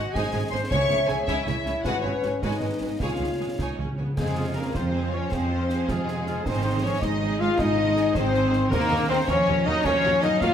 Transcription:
Already playing: F#4 D#5 F#5
0.13 G#1 G#2 G#3 D#4 G#4 C5 G#5, concert bass drum, snare
0.34 G#1 G#2 G#3 D#4 C5 G#5
0.50 G#1 G#2 G#3 D#4 C5 G#5 C6
0.69 C#2 C#3 G#3 E4 C#5 E5 G#5 C#6, concert bass drum, snare
0.89 C#2 C#3 G#3 E4 C#5 G#5, snare
1.07 C#2 C#3 G#3 E4 G#4 C#5 G#5, snare
1.25 C#2 C#3 G#3 E4 C#5 E5 G#5, concert bass drum, snare
1.45 C#2 C#3 G#3 E4 C#5 E5 G#5, snare
1.65 C#2 C#3 G#3 E4 C#5 G#5, snare
1.83 G#1 G#2 G#3 F#4 B4 F#5 G#5, concert bass drum, snare
2.00 G#1 C#5
2.05 G#2 G#3 C#4 F#4 B4 G#5
2.23 G#1 G#2 G#3 F#4 B4 G#5, snare
2.41 G#1 G#2 G#3 D#4 F#4 B4 C#5 D#5 G#5, concert bass drum, snare
2.61 G#1 G#2 G#3 F#4 B4 G#5
2.80 G#1 G#2 G#3 F#4 B4 G#5
2.99 C#2 C#3 G#3 F4 G#4 C#5 F5 G#5, concert bass drum, snare
3.09 C#3
3.16 C#2 C#3
3.21 C#3 G#3 G#4 C#5 G#5
3.32 C#3
3.39 C#2 C#3 G#3 G#4 C#5 G#5
3.47 C#3
3.56 C#2 C#3 D#4, concert bass drum, snare
3.61 C#3 C#5 G#5
3.69 C#3
3.77 C#2 C#3 C#4 C#5 G#5
3.85 C#3
3.93 C#3
3.98 C#2 C#3 B3 C#5 G#5
4.07 C#3
4.17 F2 C3 G#3 C4 G#4 F5 G#5, concert bass drum, snare, crash
4.36 F4 C5 F5
4.55 C#3 A#3 C4 G#4 A#4 F5 G#5
4.74 F2 F3 C4 F4 C5 F5, concert bass drum, snare
4.92 C4 G#4 F5 G#5
5.12 F3 C#4 F4 C5 C#5 F5
5.31 F2 F3 C4 G#4 C5 F5 G#5, concert bass drum, snare
5.49 F4 C5 F5
5.68 C4 G#4 F5 G#5, snare
5.87 F2 C3 G#3 F4 G#4 C5 F5, concert bass drum, snare
6.07 C4 G#4 F5 G#5, snare
6.27 F4 C5 F5, snare
6.44 G#1 D#3 C4 D#4 G#4 C5 D#5 G#5, concert bass drum, snare
6.63 D#4 G#4 C5 C6
6.82 F3 C#4 D#4 G#4 C#5 D#5 G#5
7.00 G#1 G#3 D#4 G#4 C5 D#5 C6, concert bass drum, snare
7.20 D#4 G#4 D#5 G#5
7.39 G#3 D#4 F4 G#4 C5 F5 C6
7.58 G#1 G#3 D#4 G#4 D#5 G#5, concert bass drum, snare
7.77 D#4 G#4 C5 C6
7.95 D#4 G#4 D#5 G#5, snare
8.13 G#1 D#3 C4 D#4 G#4 C5 C6, concert bass drum, snare
8.32 D#4 G#4 D#5 G#5, snare
8.52 D#4 G#4 C5 C6, snare
8.69 D#2 D#3 A#3 F#4 A#4 D#5 F5, concert bass drum, snare, crash
8.90 D#2 F#4 A#4 D#5 F5
9.07 D#2 D#3 C4 F#4 A#4 C5 D#5 F5
9.25 D#2 F3 C#4 C#5 D#5 F5, concert bass drum, snare
9.29 F#4 A#4
9.46 D#2 F#4 A#4 D#5 F5
9.64 D#2 F#3 D#4 F#4 A#4 D#5 F5
9.84 D#2 F3 C#4 F#4 A#4 C#5 D#5 F5, concert bass drum, snare
10.04 D#2 F#4 A#4 D#5 F5
10.22 D#2 F#3 D#4 F#4 A#4 D#5 F5, snare
10.40 D#2 A#3 F4 F#4 A#4 D#5 F5, concert bass drum, snare

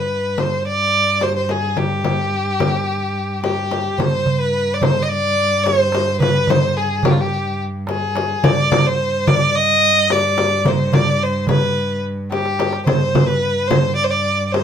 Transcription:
Already playing: G2 B4
0.38 C5, frame drum
0.67 D5
1.21 C5, frame drum
1.36 C5
1.49 G#4, frame drum
1.77 G4, frame drum
2.04 frame drum
2.60 frame drum
3.43 G4, frame drum
3.71 frame drum
3.97 G2 C5, darbuka dum, frame drum
4.26 darbuka dum
4.40 B4
4.55 darbuka ka
4.73 D5
4.81 C5, darbuka dum, frame drum
5.02 D#5
5.08 D5
5.37 darbuka ka
5.64 C5, darbuka tek, frame drum
5.92 darbuka tek, frame drum
6.20 B4, darbuka dum, frame drum
6.34 darbuka ka
6.47 C5, darbuka dum, frame drum
6.61 darbuka ka
6.75 G#4, darbuka ka
7.03 G4, darbuka dum, frame drum
7.11 F4
7.21 G4
7.59 darbuka ka
7.87 G#4, darbuka tek, frame drum
8.02 darbuka ka
8.15 darbuka tek, frame drum
8.43 G2 D5, darbuka dum, frame drum
8.58 darbuka ka
8.72 frame drum, darbuka dum
8.86 C5
9.00 darbuka ka
9.27 D5, darbuka dum, frame drum
9.55 D#5
9.69 darbuka ka
9.83 darbuka ka
10.10 D5, darbuka tek, frame drum
10.38 darbuka tek, frame drum
10.65 C5, darbuka dum, frame drum
10.79 darbuka ka
10.92 D5, darbuka dum, frame drum
11.06 darbuka ka
11.22 C5
11.47 B4, darbuka dum, frame drum
11.75 darbuka ka
11.88 darbuka ka
12.03 darbuka ka
12.17 darbuka ka
12.31 G4, darbuka tek, frame drum
12.45 darbuka ka
12.59 darbuka tek, frame drum
12.73 darbuka ka
12.86 G2 C5, darbuka dum, frame drum
13.02 darbuka ka
13.15 darbuka dum, frame drum
13.21 C5
13.27 B4, darbuka ka
13.43 darbuka ka
13.67 C5, frame drum, darbuka dum
13.95 D5
14.04 C5
14.10 D5, darbuka ka
14.27 darbuka ka
14.47 D5
14.52 C5, darbuka tek, frame drum

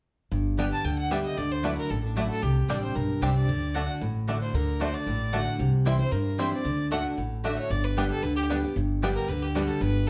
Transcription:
0.32 G1 G2
0.57 D3 G3 B3 D4 G4 D5 G5
0.72 A5
0.84 D2 D3 G5
0.99 F#5
1.10 D3 G3 B3 D4 G4 D5 E5 G5
1.25 D#5
1.37 D2 D3 D5
1.52 C5
1.63 F#3 A3 D4 E4 B4 D5 F#5
1.78 A#4
1.90 A1 A2 A4
2.04 D4
2.16 F#3 A3 D4 E4 F#4 D5 F#5
2.30 A4
2.42 C2 C3 G4
2.68 A1 G3 C4 D4 G4 D5 G5
2.83 C5
2.95 B1 G2 A#4
3.21 C2 G3 C4 D4 G4 C5 D5 G5
3.36 D5
3.48 D2 D3
3.74 D3 A3 D4 F#4 D5 F#5
4.01 A1 A2
4.27 D3 A3 D4 F#4 D5 F#5
4.42 C5
4.54 D2 D3 A#4
4.80 D3 A3 D4 F#4 C5 D5 F#5
4.94 D5
5.06 A1 A2
5.32 D3 A3 D4 F#4 D5 F#5
5.59 C2 C3
5.85 E3 G3 C4 E4 C5 G5
5.99 C4 E4 C5
6.12 G2 A#4
6.38 E3 G3 C4 E4 C5 G5
6.51 C4 E4 D5
6.65 D2 D3
6.91 D3 A3 D4 F#4 D5 F#5
7.17 A1 A2
7.44 D3 A3 D4 F#4 D5 E5 F#5
7.58 C#5
7.70 G1 G2 D5
7.84 B4
7.97 D3 G3 B3 D4 G4 D5 G5
8.11 A4
8.23 D2 D3 B4
8.36 G4
8.49 D3 G3 B3 D4 G4 D5 G5
8.64 B3 G4
8.76 G1 G2
9.02 D3 G3 B3 D4 G4 D5 G5
9.16 A#4
9.28 D2 D3 B4
9.42 G4
9.55 D3 G3 B3 D4 F#4 G4 D5 G5
9.68 A4
9.81 G1 G2 B4

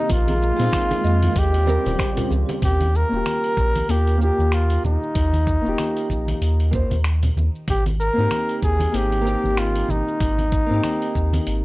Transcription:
Already playing: A#3 D#4
0.09 A#1 D#3 G#3 F4, kick, open hi-hat, muted conga, shaker
0.28 G#4, open hi-hat, high conga
0.42 shaker
0.56 A#2 G#3 C4, open hi-hat, muted conga
0.60 D#4 F4, shaker
0.73 G#4, finger snap, kick, open hi-hat, high conga, shaker
0.91 A#4, open hi-hat, muted conga
1.04 F2 D#5, shaker
1.23 open hi-hat, high conga, shaker
1.36 D#2 C#3 G3 C4 G4, kick, open hi-hat, muted conga, shaker
1.54 open hi-hat
1.66 G3 C4 C#4 A#4, muted conga, shaker
1.86 D#1 C5, open hi-hat, high conga, low conga, shaker
1.99 C5, finger snap, kick, open hi-hat, shaker
2.17 A#4, open hi-hat, muted conga, low conga
2.30 C#2 G4, high conga, shaker
2.49 G4, open hi-hat, muted conga, shaker
2.62 D#2 G4, kick, open hi-hat, low conga, shaker
2.81 open hi-hat, high conga, shaker
2.95 A#4, shaker
3.09 D#1 A#3 C#4
3.13 F4 G4, shaker
3.26 finger snap, open hi-hat, high conga, shaker
3.44 open hi-hat, shaker
3.57 A#1, kick, shaker
3.76 open hi-hat, high conga, shaker
3.88 D#2 A#3 C#4 F4 G4 A#4, open hi-hat, shaker
4.07 open hi-hat
4.17 A#3 C#4
4.21 F4 G4, shaker
4.38 D#2, high conga, shaker
4.52 F4, finger snap, open hi-hat, shaker
4.70 open hi-hat
4.84 D#2 D#4, high conga, low conga, shaker
5.03 shaker
5.15 D#2, kick, open hi-hat, shaker
5.33 open hi-hat, high conga, shaker
5.47 kick, shaker
5.61 D#1 A#3 C#4
5.66 F4 G4, shaker
5.78 finger snap, open hi-hat, high conga, shaker
5.97 open hi-hat, shaker
6.10 A#1, kick, shaker
6.28 open hi-hat, high conga, shaker
6.41 D#2, open hi-hat, shaker
6.60 open hi-hat
6.71 A#3 C#4 F4 C5, kick, shaker
6.90 D#2, open hi-hat, high conga, low conga, shaker
7.04 finger snap, open hi-hat, shaker
7.23 open hi-hat, low conga
7.36 D#2, high conga, shaker
7.55 shaker
7.68 G#1 G4, kick, open hi-hat, low conga, shaker
7.86 open hi-hat, high conga, shaker
8.00 A#4, shaker
8.13 A#3 C4
8.18 G#2 D#4 G4, shaker
8.31 finger snap, open hi-hat, high conga, shaker
8.49 open hi-hat, shaker
8.62 D#2 G#4, kick, shaker
8.80 open hi-hat, high conga, shaker
8.92 G#1 A#3 C4 D#4 G#4, open hi-hat, shaker
8.96 G4
9.12 open hi-hat
9.21 A#3 C4
9.26 D#4 G4, shaker
9.44 G#1, high conga, shaker
9.57 F4, finger snap, open hi-hat, shaker
9.76 open hi-hat
9.88 G#1 D#4, high conga, low conga, shaker
10.08 shaker
10.20 G#1, kick, open hi-hat, shaker
10.38 open hi-hat, high conga, shaker
10.52 kick, shaker
10.66 A#3 C4
10.70 G#2 D#4 G4, shaker
10.84 finger snap, open hi-hat, high conga, shaker
11.02 open hi-hat, shaker
11.15 D#2, kick, shaker
11.33 open hi-hat, high conga, shaker
11.47 G#1, open hi-hat, shaker

